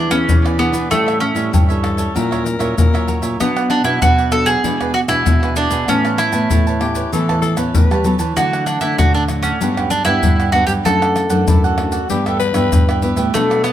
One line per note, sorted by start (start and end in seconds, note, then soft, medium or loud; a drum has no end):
0.00 0.26 E3 medium
0.00 0.11 D4 medium
0.11 0.25 E3 medium
0.11 0.54 B3 medium
0.11 0.55 C#4 medium
0.11 0.54 G#4 medium
0.11 0.43 G#4 soft
0.11 0.42 B4 medium
0.11 pandeiro medium
0.11 tamborim medium
0.11 maracas medium
0.11 surdo soft
0.28 0.88 B2 medium
0.28 0.69 E3 medium
0.28 pandeiro medium
0.28 maracas medium
0.28 surdo loud
0.44 0.58 G#4 medium
0.44 0.58 B4 medium
0.44 0.59 D5 medium
0.44 pandeiro soft
0.44 tamborim medium
0.44 maracas soft
0.58 0.85 B3 soft
0.58 0.91 B3 medium
0.58 0.85 D4 medium
0.58 0.73 E4 soft
0.58 0.73 G#4 medium
0.58 0.86 G#4 medium
0.58 0.72 B4 soft
0.58 0.71 D5 medium
0.58 pandeiro medium
0.72 0.87 E3 medium
0.72 0.89 G#4 soft
0.72 0.89 B4 medium
0.72 0.88 D5 medium
0.72 pandeiro medium
0.72 maracas medium
0.72 surdo soft
0.90 1.50 A2 medium
0.90 1.31 A2 medium
0.90 1.20 G3 medium
0.90 1.20 A3 medium
0.90 1.20 C#4 medium
0.90 1.20 E4 medium
0.90 1.05 G4 soft
0.90 1.05 A4 soft
0.90 1.05 C#5 soft
0.90 1.05 E5 soft
0.90 pandeiro medium
0.90 tamborim medium
0.90 maracas medium
0.90 surdo medium
1.06 1.35 A4 medium
1.06 1.34 C#5 soft
1.06 1.33 E5 medium
1.06 pandeiro soft
1.06 tamborim medium
1.06 maracas soft
1.20 3.04 C#4 medium
1.20 pandeiro medium
1.20 tamborim medium
1.35 1.49 A2 medium
1.35 1.63 G3 medium
1.35 1.63 C#4 medium
1.35 1.63 E4 medium
1.35 1.51 A4 medium
1.35 1.51 C#5 medium
1.35 1.50 E5 medium
1.35 pandeiro medium
1.35 maracas medium
1.53 2.06 G2 medium
1.53 1.68 G4 soft
1.53 1.68 A4 soft
1.53 1.68 C#5 medium
1.53 1.67 E5 medium
1.53 pandeiro medium
1.53 maracas medium
1.53 surdo loud
1.69 2.11 G3 soft
1.69 2.11 C#4 soft
1.69 2.11 E4 medium
1.69 1.98 A4 medium
1.69 1.97 C#5 medium
1.69 1.96 E5 medium
1.69 pandeiro soft
1.69 maracas soft
1.83 2.17 A4 medium
1.83 pandeiro medium
1.83 tamborim medium
1.97 2.14 A4 soft
1.97 2.13 C#5 medium
1.97 2.13 E5 medium
1.97 pandeiro medium
1.97 maracas medium
1.97 surdo soft
2.15 2.74 A#2 medium
2.15 2.55 A#2 loud
2.15 2.57 F#3 medium
2.15 2.57 C#4 medium
2.15 2.57 E4 medium
2.15 2.29 F#4 soft
2.15 2.30 A#4 medium
2.15 2.77 A#4 loud
2.15 2.30 C#5 soft
2.15 2.30 E5 soft
2.15 pandeiro medium
2.15 maracas medium
2.15 surdo medium
2.31 2.44 A#4 medium
2.31 2.44 C#5 medium
2.31 2.44 E5 medium
2.31 pandeiro soft
2.31 tamborim medium
2.31 maracas soft
2.31 surdo soft
2.45 muted cavaquinho stroke soft
2.45 pandeiro medium
2.45 maracas medium
2.59 2.74 A#2 medium
2.59 2.87 F#3 medium
2.59 2.87 C#4 medium
2.59 2.87 E4 medium
2.59 2.91 A#4 soft
2.59 2.91 C#5 medium
2.59 2.90 E5 medium
2.59 pandeiro medium
2.59 tamborim medium
2.59 maracas medium
2.59 surdo soft
2.77 3.36 A#2 medium
2.77 3.17 A#2 medium
2.77 3.21 A#4 medium
2.77 pandeiro medium
2.77 maracas medium
2.77 surdo loud
2.93 3.35 F#3 medium
2.93 3.35 C#4 medium
2.93 3.35 E4 medium
2.93 3.07 A#4 soft
2.93 3.08 C#5 medium
2.93 3.08 E5 medium
2.93 pandeiro soft
2.93 tamborim medium
2.93 maracas soft
3.07 3.22 F#4 soft
3.07 3.23 A#4 medium
3.07 3.22 C#5 medium
3.07 3.21 E5 medium
3.07 pandeiro medium
3.07 maracas medium
3.07 surdo soft
3.22 3.36 A#2 medium
3.22 3.38 A#4 medium
3.22 3.38 C#5 medium
3.22 3.37 E5 medium
3.22 pandeiro medium
3.22 maracas medium
3.22 surdo soft
3.40 3.99 B2 medium
3.40 3.79 B2 medium
3.40 3.81 F#3 medium
3.40 3.81 B3 medium
3.40 3.69 B3 medium
3.40 3.54 D4 soft
3.40 3.82 D4 medium
3.40 3.55 B4 soft
3.40 3.55 D5 soft
3.40 3.55 F#5 medium
3.40 pandeiro medium
3.40 tamborim medium
3.40 maracas medium
3.40 surdo medium
3.57 3.85 B4 soft
3.57 3.84 D5 medium
3.57 3.83 F#5 medium
3.57 pandeiro soft
3.57 tamborim medium
3.57 maracas soft
3.70 3.84 D4 medium
3.70 pandeiro medium
3.70 tamborim medium
3.84 3.98 B2 medium
3.84 4.27 F#3 medium
3.84 4.27 B3 medium
3.84 4.27 D4 medium
3.84 4.00 E4 medium
3.84 4.01 B4 soft
3.84 4.00 D5 medium
3.84 4.00 F#5 medium
3.84 pandeiro medium
3.84 maracas medium
4.02 4.61 F#2 medium
4.02 4.55 B2 medium
4.02 4.16 D4 soft
4.02 4.31 F#4 medium
4.02 4.17 B4 medium
4.02 4.17 D5 medium
4.02 4.17 F#5 medium
4.02 pandeiro medium
4.02 maracas medium
4.02 surdo loud
4.18 4.47 B4 medium
4.18 4.46 D5 medium
4.18 4.45 F#5 medium
4.18 pandeiro soft
4.18 maracas soft
4.32 4.59 F#3 medium
4.32 4.59 B3 soft
4.32 4.59 D4 medium
4.32 4.48 A4 medium
4.32 pandeiro medium
4.32 tamborim medium
4.32 maracas medium
4.46 4.91 G#4 medium
4.46 4.63 B4 medium
4.46 4.62 D5 medium
4.46 4.62 F#5 medium
4.46 pandeiro medium
4.46 maracas medium
4.46 surdo soft
4.63 5.23 B2 medium
4.63 5.04 B2 medium
4.63 4.93 E3 medium
4.63 4.93 G#3 medium
4.63 4.93 D4 medium
4.63 4.78 E4 medium
4.63 4.79 G#4 soft
4.63 4.79 B4 medium
4.63 4.79 D5 medium
4.63 pandeiro medium
4.63 maracas medium
4.63 surdo medium
4.80 4.93 G#4 medium
4.80 4.94 B4 medium
4.80 4.94 D5 medium
4.80 pandeiro soft
4.80 tamborim medium
4.80 maracas soft
4.80 surdo soft
4.94 4.99 F#4 medium
4.94 muted cavaquinho stroke soft
4.94 pandeiro medium
5.08 5.23 B2 medium
5.08 5.51 E3 medium
5.08 5.51 G#3 medium
5.08 5.52 D4 medium
5.08 5.56 E4 loud
5.08 5.40 G#4 medium
5.08 5.40 B4 medium
5.08 5.39 D5 medium
5.08 pandeiro medium
5.08 tamborim medium
5.08 maracas medium
5.08 surdo soft
5.26 5.85 B2 soft
5.26 5.66 B2 medium
5.26 pandeiro medium
5.26 maracas medium
5.26 surdo loud
5.43 5.56 G#4 medium
5.43 5.57 B4 medium
5.43 5.56 D5 medium
5.43 pandeiro soft
5.43 tamborim medium
5.43 maracas soft
5.56 5.75 E3 medium
5.56 5.75 G#3 medium
5.56 5.89 D4 medium
5.56 5.75 D4 medium
5.56 5.71 E4 soft
5.56 5.71 G#4 soft
5.56 5.70 B4 soft
5.56 5.69 D5 medium
5.56 pandeiro medium
5.56 maracas medium
5.70 5.85 B2 medium
5.70 5.87 G#4 medium
5.70 5.86 B4 medium
5.70 5.86 D5 medium
5.70 pandeiro medium
5.70 maracas medium
5.70 surdo soft
5.88 6.47 A2 medium
5.88 6.28 A2 medium
5.88 6.30 E3 medium
5.88 6.30 B3 medium
5.88 6.21 C#4 medium
5.88 6.30 C#4 medium
5.88 6.03 A4 soft
5.88 6.03 B4 soft
5.88 6.03 C#5 soft
5.88 6.03 A5 soft
5.88 pandeiro medium
5.88 tamborim medium
5.88 maracas medium
5.88 surdo medium
6.05 6.32 B4 medium
6.05 6.33 C#5 medium
6.05 6.31 A5 medium
6.05 pandeiro soft
6.05 tamborim medium
6.05 maracas soft
6.18 8.01 E4 medium
6.18 pandeiro medium
6.18 tamborim medium
6.18 maracas medium
6.32 6.47 A2 medium
6.32 6.49 E3 medium
6.32 6.75 B3 medium
6.32 6.75 C#4 medium
6.32 6.49 B4 medium
6.32 6.49 C#5 soft
6.32 6.48 A5 medium
6.32 pandeiro medium
6.32 maracas medium
6.50 7.03 A2 medium
6.50 6.79 E3 medium
6.50 6.65 A4 medium
6.50 6.65 B4 medium
6.50 6.65 C#5 soft
6.50 6.66 A5 medium
6.50 pandeiro medium
6.50 maracas medium
6.50 surdo medium
6.67 6.95 B4 medium
6.67 6.95 C#5 medium
6.67 6.93 A5 medium
6.67 pandeiro soft
6.67 maracas soft
6.80 7.07 E3 soft
6.80 7.07 B3 medium
6.80 7.07 C#4 medium
6.80 7.10 G4 medium
6.80 pandeiro medium
6.80 tamborim medium
6.95 7.11 B4 soft
6.95 7.11 C#5 soft
6.95 7.10 A5 medium
6.95 pandeiro medium
6.95 maracas medium
6.95 surdo soft
7.12 7.72 A2 medium
7.12 7.57 E3 medium
7.12 7.54 E3 medium
7.12 7.54 B3 medium
7.12 7.55 C#4 medium
7.12 7.41 A4 medium
7.12 7.27 A4 soft
7.12 7.28 B4 medium
7.12 7.27 C#5 soft
7.12 7.28 A5 medium
7.12 pandeiro medium
7.12 maracas medium
7.12 surdo soft
7.29 7.43 B4 medium
7.29 7.43 C#5 soft
7.29 7.43 A5 medium
7.29 pandeiro soft
7.29 tamborim medium
7.29 maracas soft
7.29 surdo soft
7.42 7.56 A4 medium
7.42 muted cavaquinho stroke soft
7.42 pandeiro medium
7.42 maracas medium
7.57 7.71 A2 medium
7.57 7.73 E3 medium
7.57 8.00 B3 medium
7.57 8.00 C#4 medium
7.57 7.88 B4 medium
7.57 7.89 C#5 soft
7.57 7.88 A5 medium
7.57 pandeiro medium
7.57 tamborim medium
7.57 maracas medium
7.57 surdo soft
7.74 7.88 A2 medium
7.74 8.03 E3 soft
7.74 8.18 B4 medium
7.74 pandeiro medium
7.74 maracas medium
7.74 surdo loud
7.91 8.04 G3 medium
7.91 8.05 B4 soft
7.91 8.05 C#5 soft
7.91 8.05 A5 medium
7.91 pandeiro soft
7.91 tamborim medium
7.91 maracas soft
8.04 8.23 E3 soft
8.04 8.18 F#3 medium
8.04 8.24 B3 medium
8.04 8.24 C#4 medium
8.04 8.20 A4 soft
8.04 8.19 B4 medium
8.04 8.20 C#5 soft
8.04 8.18 A5 soft
8.04 pandeiro medium
8.04 maracas medium
8.19 8.34 E3 medium
8.19 8.35 B4 medium
8.19 8.36 C#5 medium
8.19 8.35 A5 medium
8.19 pandeiro medium
8.19 maracas medium
8.19 surdo soft
8.36 8.96 D3 medium
8.36 8.76 D3 medium
8.36 8.78 F#3 medium
8.36 8.78 A3 medium
8.36 8.79 D4 medium
8.36 8.51 D4 soft
8.36 8.66 F#4 medium
8.36 8.52 A4 soft
8.36 8.52 D5 soft
8.36 8.52 F#5 soft
8.36 pandeiro medium
8.36 tamborim medium
8.36 maracas medium
8.36 surdo medium
8.53 8.82 A4 soft
8.53 8.81 D5 medium
8.53 8.80 F#5 medium
8.53 pandeiro soft
8.53 tamborim medium
8.53 maracas soft
8.66 8.80 D4 medium
8.66 pandeiro medium
8.66 tamborim medium
8.66 maracas medium
8.81 8.95 D3 medium
8.81 9.24 F#3 medium
8.81 9.24 A3 medium
8.81 9.24 D4 medium
8.81 8.97 E4 medium
8.81 8.98 A4 medium
8.81 8.97 D5 medium
8.81 8.97 F#5 medium
8.81 pandeiro medium
8.81 maracas medium
8.98 9.58 A2 medium
8.98 9.51 D3 medium
8.98 9.13 D4 soft
8.98 9.13 F#4 medium
8.98 9.14 A4 soft
8.98 9.14 D5 soft
8.98 9.14 F#5 medium
8.98 pandeiro medium
8.98 maracas medium
8.98 surdo loud
9.14 9.23 D4 medium
9.14 9.44 A4 medium
9.14 9.43 D5 medium
9.14 9.42 F#5 medium
9.14 pandeiro soft
9.14 maracas soft
9.28 9.48 F#3 soft
9.28 9.48 A3 soft
9.28 9.48 D4 soft
9.28 pandeiro medium
9.28 tamborim medium
9.28 maracas medium
9.43 9.87 C#4 medium
9.43 9.60 A4 soft
9.43 9.59 D5 medium
9.43 9.59 F#5 medium
9.43 pandeiro medium
9.43 maracas medium
9.43 surdo soft
9.61 10.00 G2 medium
9.61 10.21 G2 medium
9.61 10.03 F#3 medium
9.61 10.03 B3 medium
9.61 9.75 D4 medium
9.61 9.76 G4 soft
9.61 9.76 B4 soft
9.61 9.76 F#5 medium
9.61 pandeiro medium
9.61 maracas medium
9.61 surdo medium
9.77 9.90 G4 medium
9.77 9.91 B4 medium
9.77 9.91 F#5 medium
9.77 pandeiro soft
9.77 tamborim medium
9.77 maracas soft
9.77 surdo soft
9.90 10.04 D4 medium
9.90 muted cavaquinho stroke soft
9.90 pandeiro medium
9.90 maracas medium
10.05 10.19 G2 medium
10.05 10.49 B3 medium
10.05 10.49 D4 medium
10.05 10.52 E4 medium
10.05 10.37 G4 medium
10.05 10.37 B4 medium
10.05 10.36 F#5 medium
10.05 pandeiro medium
10.05 tamborim medium
10.05 maracas medium
10.05 surdo soft
10.23 10.63 G2 medium
10.23 10.83 D3 medium
10.23 pandeiro medium
10.23 maracas medium
10.23 surdo medium
10.39 10.53 G4 medium
10.39 10.54 B4 medium
10.39 10.53 F#5 medium
10.39 pandeiro soft
10.39 tamborim medium
10.39 maracas soft
10.52 10.80 F#3 medium
10.52 10.80 B3 medium
10.52 10.68 D4 soft
10.52 10.81 D4 medium
10.52 10.66 F#4 medium
10.52 10.68 G4 medium
10.52 10.67 B4 medium
10.52 10.66 F#5 medium
10.52 pandeiro medium
10.52 surdo soft
10.67 10.82 G2 medium
10.67 10.72 G4 medium
10.67 10.84 G4 soft
10.67 10.84 B4 medium
10.67 10.83 F#5 medium
10.67 pandeiro medium
10.67 maracas medium
10.67 surdo soft
10.85 11.25 F#2 medium
10.85 11.45 F#2 medium
10.85 11.27 E3 medium
10.85 11.27 A3 medium
10.85 11.28 D4 medium
10.85 11.00 E4 soft
10.85 12.06 A4 medium
10.85 11.00 A4 soft
10.85 11.01 D5 soft
10.85 11.00 F#5 medium
10.85 pandeiro medium
10.85 tamborim medium
10.85 maracas medium
10.85 surdo medium
11.01 11.31 A4 soft
11.01 11.30 D5 medium
11.01 11.29 F#5 medium
11.01 pandeiro soft
11.01 tamborim medium
11.01 maracas soft
11.16 pandeiro medium
11.16 tamborim medium
11.16 maracas medium
11.29 11.44 F#2 medium
11.29 11.73 E3 medium
11.29 11.73 A3 medium
11.29 11.73 D4 medium
11.29 11.46 A4 soft
11.29 11.46 D5 medium
11.29 11.45 F#5 medium
11.29 pandeiro medium
11.29 maracas medium
11.48 12.00 F#2 medium
11.48 12.07 F#2 medium
11.48 11.62 E4 soft
11.48 11.66 E4 medium
11.48 11.62 A4 soft
11.48 11.63 D5 medium
11.48 11.63 F#5 medium
11.48 pandeiro medium
11.48 maracas medium
11.48 surdo loud
11.64 12.09 F#4 medium
11.64 11.93 A4 medium
11.64 11.92 D5 medium
11.64 11.91 F#5 medium
11.64 pandeiro soft
11.64 maracas soft
11.78 11.97 E3 soft
11.78 11.97 A3 soft
11.78 11.97 D4 medium
11.78 pandeiro medium
11.78 tamborim medium
11.92 12.09 A4 soft
11.92 12.08 D5 medium
11.92 12.08 F#5 medium
11.92 pandeiro medium
11.92 maracas medium
11.92 surdo soft
12.09 12.49 G2 medium
12.09 12.69 G2 medium
12.09 12.52 E3 medium
12.09 12.52 B3 medium
12.09 12.24 E4 soft
12.09 12.52 E4 medium
12.09 12.28 G4 medium
12.09 12.24 G4 soft
12.09 12.25 B4 soft
12.09 12.25 E5 medium
12.09 pandeiro medium
12.09 maracas medium
12.09 surdo medium
12.26 12.40 G4 medium
12.26 12.39 A4 medium
12.26 12.40 B4 medium
12.26 12.40 E5 medium
12.26 pandeiro soft
12.26 tamborim medium
12.26 maracas soft
12.26 surdo soft
12.39 13.14 B4 loud
12.39 muted cavaquinho stroke soft
12.39 pandeiro medium
12.39 maracas medium
12.54 12.68 G2 medium
12.54 12.97 E3 medium
12.54 12.98 B3 medium
12.54 12.98 E4 medium
12.54 12.86 G4 medium
12.54 12.86 B4 medium
12.54 12.85 E5 medium
12.54 pandeiro medium
12.54 tamborim medium
12.54 maracas medium
12.54 surdo soft
12.72 13.12 G2 medium
12.72 13.31 G2 soft
12.72 pandeiro medium
12.72 maracas medium
12.72 surdo loud
12.88 13.01 G4 medium
12.88 13.02 B4 medium
12.88 13.02 E5 medium
12.88 pandeiro soft
12.88 tamborim medium
12.88 maracas soft
13.02 13.29 E3 medium
13.02 13.29 B3 medium
13.02 13.17 E4 soft
13.02 13.29 E4 medium
13.02 13.17 G4 medium
13.02 13.16 B4 medium
13.02 13.15 E5 medium
13.02 pandeiro medium
13.02 maracas medium
13.02 surdo soft
13.16 13.31 A2 medium
13.16 13.33 G4 medium
13.16 13.32 B4 medium
13.16 13.32 E5 medium
13.16 pandeiro medium
13.16 maracas medium
13.16 surdo soft
13.34 13.73 B2 medium
13.34 13.64 F#3 medium
13.34 13.63 A3 medium
13.34 13.64 A3 medium
13.34 13.49 D4 soft
13.34 13.64 D4 medium
13.34 13.49 A4 soft
13.34 13.49 B4 soft
13.34 13.49 D5 soft
13.34 pandeiro medium
13.34 tamborim medium
13.34 maracas medium
13.34 surdo medium
13.50 13.73 A4 soft
13.50 13.73 B4 medium
13.50 13.73 D5 medium
13.50 pandeiro soft
13.50 tamborim medium
13.50 maracas soft
13.64 13.73 B3 medium
13.64 pandeiro soft
13.64 tamborim medium
13.64 maracas medium